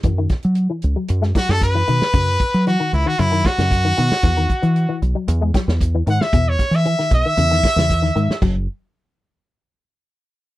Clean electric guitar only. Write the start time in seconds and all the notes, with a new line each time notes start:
0.05 E3
0.18 D#3
0.70 E3
0.96 F#3
1.22 G#3
1.35 F#3
1.75 E3
1.88 D#3
2.14 C#3
2.67 E3
2.80 D#3
3.06 D#3
3.19 C#3
3.32 D#3
3.59 C#3
3.85 D#3
3.98 D#3
4.24 E3
4.37 D#3
4.62 E3
4.89 E3
5.15 F#3
5.41 G#3
5.55 F#3
5.95 E3
6.08 D#3
6.34 B2
6.86 E3
6.99 D#3
7.26 D#3
7.38 C#3
7.51 D#3
7.77 C#3
8.02 D#3
8.16 D#3
8.42 F#3